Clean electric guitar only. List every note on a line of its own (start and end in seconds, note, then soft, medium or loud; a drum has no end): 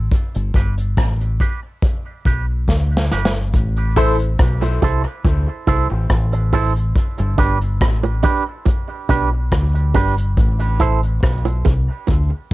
0.55 0.74 D4 medium
0.55 0.74 G4 medium
0.55 0.74 B4 medium
1.20 muted clean electric guitar stroke soft
1.40 1.59 D4 medium
1.40 1.59 G4 medium
1.40 1.60 B4 medium
2.25 2.45 D4 medium
2.25 2.45 G4 medium
2.25 2.45 B4 medium
3.11 3.30 D4 medium
3.11 3.31 G4 medium
3.11 3.31 B4 medium
3.97 4.16 E4 medium
3.97 4.16 A4 medium
3.97 4.16 C5 medium
4.82 5.01 E4 medium
4.82 5.02 A4 medium
4.82 5.02 C5 medium
5.05 muted clean electric guitar stroke soft
5.67 5.86 E4 medium
5.67 5.87 A4 medium
5.67 5.87 C5 medium
6.33 muted clean electric guitar stroke soft
6.53 6.72 E4 medium
6.53 6.73 A4 medium
6.53 6.73 C5 medium
7.38 7.57 D4 medium
7.38 7.58 G4 medium
7.38 7.58 B4 medium
8.04 muted clean electric guitar stroke soft
8.23 8.43 D4 medium
8.23 8.43 G4 medium
8.23 8.44 B4 medium
9.09 9.28 D4 medium
9.09 9.29 G4 medium
9.09 9.29 B4 medium
9.94 10.14 D4 medium
9.94 10.14 G4 medium
9.94 10.15 B4 medium
10.80 10.99 E4 medium
10.80 11.00 A4 medium
10.80 11.00 C5 medium